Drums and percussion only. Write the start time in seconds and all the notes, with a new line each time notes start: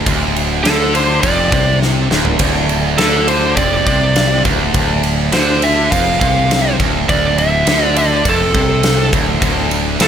0.06 kick, ride
0.36 ride
0.65 snare, ride
0.95 ride
1.23 kick, ride
1.52 kick, ride
1.82 snare
2.11 snare
2.25 floor tom
2.39 kick, ride, crash
2.69 ride
2.98 snare, ride
3.28 ride
3.57 kick, ride
3.87 kick, ride
4.16 snare, ride
4.45 kick, ride
4.74 kick, ride
5.03 ride
5.32 snare, ride
5.62 ride
5.92 kick, ride
6.21 kick, ride
6.51 snare, ride
6.80 kick, ride
7.09 kick, ride
7.38 ride
7.67 snare, ride
7.96 ride
8.25 kick, ride
8.55 kick, ride
8.83 snare, ride
9.13 kick, ride
9.42 kick, ride
9.71 ride
10.00 snare, ride